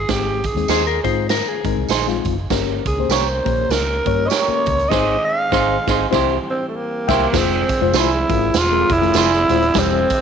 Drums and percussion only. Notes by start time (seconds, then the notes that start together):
0.09 kick, snare, closed hi-hat, tambourine
0.44 kick, closed hi-hat
0.57 closed hi-hat
0.68 snare, closed hi-hat, tambourine
1.05 kick, closed hi-hat
1.29 snare, closed hi-hat, tambourine
1.65 kick, closed hi-hat
1.89 snare, closed hi-hat, tambourine
2.09 snare
2.25 kick, closed hi-hat
2.50 kick, snare, closed hi-hat, tambourine
2.86 kick, closed hi-hat
3.10 snare, closed hi-hat, tambourine
3.46 kick, closed hi-hat
3.70 snare, closed hi-hat, tambourine
4.06 kick, closed hi-hat
4.30 snare, closed hi-hat, tambourine
4.66 kick, closed hi-hat
4.79 closed hi-hat
4.91 kick, snare, crash
5.52 kick, snare
5.87 kick, snare
6.13 kick, snare
7.09 kick, snare, crash
7.34 kick, snare, crash, tambourine
7.69 kick, closed hi-hat
7.93 snare, closed hi-hat, tambourine
8.30 kick, closed hi-hat
8.54 snare, closed hi-hat, tambourine
8.90 kick, closed hi-hat
9.03 closed hi-hat
9.14 snare, closed hi-hat, tambourine
9.33 snare
9.49 closed hi-hat
9.62 closed hi-hat
9.74 kick, snare, closed hi-hat, tambourine
10.10 kick, closed hi-hat